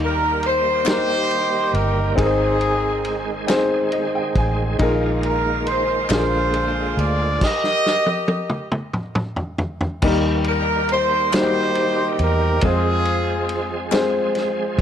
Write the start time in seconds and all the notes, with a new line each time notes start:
Already playing: D#2 D#3 G3 A#3 D#4 G4 A#4
0.04 A#4
0.43 C5, ride
0.84 A#3 D#4 G4 A#4, snare, clap, ride
0.89 C5
1.31 ride
1.74 G1 A#4, ride
2.16 G#1 G#2 G#3 C4 D#4 G#4 A#4, kick, ride
2.26 C5
2.61 ride
3.05 ride
3.47 C4 D#4 G#4 C5, snare, clap, ride
3.92 D#5, ride
4.15 G5
4.35 A1 G#5, kick, ride
4.79 A#1 A#2 D#3 A#3 D#4 F4 G#4 A#4, kick, ride
5.23 A#4, ride
5.67 C5, ride
6.09 A#1 A#2 D3 D4 F4 G#4 A#4, snare, clap, ride
6.13 F4 G#4 C5
6.54 ride
6.97 D2 D5, ride
7.41 G4 A#4 D#5, kick, snare, crash
7.64 snare
7.86 snare
8.06 high tom
8.28 high tom
8.50 mid tom
8.72 mid tom
8.93 mid tom
9.15 mid tom
9.36 floor tom
9.58 floor tom
9.81 floor tom
10.02 D#2 D#3 G3 A#3 D#4 G4, kick, crash
10.06 A#4
10.44 ride
10.49 A#4
10.89 C5, ride
11.32 G3 A#3 D#4 F#4 G4 C5, snare, clap, ride
11.41 G4
11.75 ride
12.19 E2, ride
12.23 A#4
12.61 F2 F3 G#3 C4 F4 G#4, kick, ride
12.65 C4 F4 C5
13.05 ride
13.49 ride
13.91 G#3 C4 F4 G#4 C5, snare, clap, ride
14.35 snare, ride
14.78 A1, kick, ride